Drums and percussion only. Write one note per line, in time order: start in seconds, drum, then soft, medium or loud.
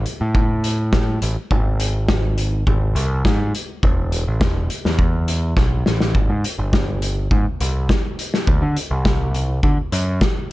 0.06 closed hi-hat medium
0.35 kick loud
0.64 closed hi-hat medium
0.93 kick loud
0.93 snare loud
1.22 closed hi-hat medium
1.51 kick loud
1.80 closed hi-hat medium
2.08 kick loud
2.08 snare loud
2.38 closed hi-hat medium
2.67 kick loud
2.96 closed hi-hat medium
3.25 kick medium
3.25 snare loud
3.55 closed hi-hat medium
3.83 kick loud
4.12 closed hi-hat medium
4.41 kick loud
4.41 snare loud
4.70 closed hi-hat medium
4.85 snare medium
4.99 kick loud
5.28 closed hi-hat medium
5.57 kick loud
5.57 snare medium
5.86 snare medium
6.00 snare medium
6.15 kick medium
6.44 closed hi-hat medium
6.73 kick loud
6.73 snare loud
7.02 closed hi-hat medium
7.31 kick loud
7.60 closed hi-hat medium
7.89 kick medium
7.89 snare medium
8.19 closed hi-hat medium
8.34 snare medium
8.47 kick loud
8.76 closed hi-hat medium
9.05 kick loud
9.05 snare loud
9.34 closed hi-hat medium
9.63 kick loud
9.92 closed hi-hat medium
10.21 kick medium
10.21 snare loud